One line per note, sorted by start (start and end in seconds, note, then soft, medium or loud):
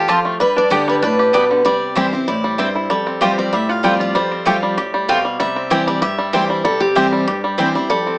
0.00 0.22 C4 medium
0.00 0.37 F4 medium
0.08 0.39 F2 medium
0.08 0.18 C4 medium
0.08 0.32 F4 medium
0.08 0.18 F4 loud
0.08 0.40 G4 medium
0.08 0.18 C5 medium
0.08 0.18 A5 loud
0.25 0.40 A3 medium
0.40 1.00 G2 medium
0.40 0.87 G3 medium
0.40 0.57 B4 loud
0.56 1.00 D4 medium
0.56 0.86 D5 loud
0.70 1.01 D3 medium
0.70 1.01 G3 loud
0.70 0.80 B3 medium
0.70 1.01 B3 loud
0.70 0.81 G4 medium
0.70 1.19 G4 medium
0.70 1.02 G4 loud
0.70 0.81 D5 medium
0.70 0.81 G5 medium
0.88 1.34 G3 medium
0.88 0.94 B4 medium
1.02 1.32 A2 loud
1.02 1.47 D4 medium
1.02 1.33 B4 medium
1.19 1.96 G4 medium
1.33 1.64 B2 medium
1.33 1.65 G3 medium
1.33 1.43 B3 medium
1.33 1.43 G4 medium
1.33 1.63 B4 medium
1.33 1.43 D5 loud
1.33 1.43 G5 medium
1.51 1.65 D3 medium
1.65 2.24 C3 medium
1.65 2.10 G3 medium
1.65 1.94 D5 loud
1.95 2.12 E3 medium
1.95 2.12 G3 medium
1.95 2.05 C4 medium
1.95 2.12 C4 loud
1.95 2.06 E4 medium
1.95 2.11 E4 medium
1.95 2.41 G4 medium
1.95 2.06 C5 medium
1.95 2.27 C5 medium
1.95 2.06 G5 medium
2.13 2.56 C4 medium
2.13 2.28 C4 medium
2.13 2.27 E4 medium
2.28 2.58 A2 medium
2.28 2.72 E4 medium
2.28 2.59 D5 loud
2.44 2.87 G3 medium
2.58 2.89 G2 medium
2.58 2.68 C4 medium
2.58 2.90 C4 medium
2.58 2.68 E4 medium
2.58 2.68 C5 loud
2.58 2.88 C5 medium
2.58 2.69 G5 medium
2.75 2.90 E4 medium
2.90 3.50 F2 medium
2.90 3.53 G3 medium
2.90 3.22 A4 medium
3.07 3.38 C4 medium
3.21 3.51 F3 medium
3.21 3.51 G3 loud
3.21 3.31 A3 medium
3.21 3.52 C4 loud
3.21 3.31 F4 loud
3.21 3.52 F4 medium
3.21 3.72 G4 medium
3.21 3.31 C5 loud
3.21 3.39 C5 medium
3.21 3.31 G5 medium
3.38 4.31 C4 medium
3.38 3.54 D5 loud
3.53 4.12 A2 medium
3.53 3.83 G3 medium
3.53 3.69 E5 loud
3.69 3.99 F4 medium
3.69 4.00 F5 loud
3.83 4.13 F3 medium
3.83 4.14 G3 medium
3.83 4.14 G3 loud
3.83 3.93 A3 medium
3.83 4.14 C4 medium
3.83 3.93 F4 medium
3.83 4.14 F4 loud
3.83 3.93 C5 loud
3.83 3.94 G5 medium
4.00 4.43 F4 medium
4.00 4.16 D5 loud
4.15 4.75 F2 medium
4.15 4.62 G3 medium
4.15 4.44 C5 medium
4.32 5.08 C4 medium
4.45 4.76 F3 loud
4.45 4.76 G3 medium
4.45 4.55 A3 loud
4.45 4.77 C4 loud
4.45 4.56 F4 medium
4.45 4.77 F4 medium
4.45 4.77 G4 medium
4.45 4.56 C5 medium
4.45 4.56 G5 loud
4.63 4.93 G3 medium
4.77 5.07 A2 medium
4.77 5.70 G4 medium
4.94 5.24 G3 medium
5.08 5.39 B2 medium
5.08 5.18 A3 medium
5.08 5.56 C4 medium
5.08 5.18 F4 loud
5.08 5.18 C5 medium
5.08 5.38 F5 medium
5.08 5.19 G5 loud
5.25 5.39 G3 medium
5.40 6.00 C3 medium
5.40 5.87 G3 medium
5.40 5.72 E5 loud
5.56 6.33 C4 medium
5.70 6.01 E3 medium
5.70 6.01 G3 loud
5.70 5.80 C4 medium
5.70 6.02 C4 loud
5.70 5.81 E4 medium
5.70 6.02 E4 medium
5.70 6.02 G4 medium
5.70 5.87 C5 loud
5.70 5.81 C5 loud
5.70 5.81 G5 loud
5.87 6.18 G3 medium
5.87 6.01 D5 loud
6.02 6.62 G2 medium
6.02 6.96 G4 medium
6.02 6.34 E5 loud
6.18 6.49 G3 medium
6.33 6.63 E3 medium
6.33 6.64 G3 medium
6.33 6.43 C4 medium
6.33 6.81 C4 soft
6.33 6.64 C4 medium
6.33 6.43 E4 medium
6.33 6.65 E4 medium
6.33 6.63 C5 medium
6.33 6.43 C5 loud
6.33 6.43 G5 loud
6.50 6.64 G3 medium
6.65 7.24 C3 medium
6.65 7.12 G3 medium
6.65 6.80 A4 loud
6.80 7.58 C4 medium
6.80 7.39 G4 medium
6.95 7.26 E3 medium
6.95 7.26 G3 loud
6.95 7.05 C4 medium
6.95 7.26 C4 loud
6.95 7.06 E4 loud
6.95 7.27 E4 loud
6.95 7.27 G4 medium
6.95 7.06 C5 loud
6.95 7.06 G5 loud
7.12 7.44 G3 medium
7.27 7.87 G2 loud
7.27 8.18 G4 medium
7.44 7.75 G3 medium
7.58 7.74 E3 medium
7.58 7.75 G3 medium
7.58 7.68 C4 medium
7.58 8.06 C4 medium
7.58 7.75 C4 medium
7.58 7.68 E4 medium
7.58 7.74 E4 loud
7.58 7.89 C5 medium
7.58 7.68 C5 loud
7.58 7.68 G5 loud
7.75 7.90 G3 medium
7.75 7.90 C4 soft
7.75 7.89 E4 medium
7.90 8.18 F2 medium
7.90 8.18 G3 medium
7.90 8.18 A4 medium
8.07 8.18 C4 medium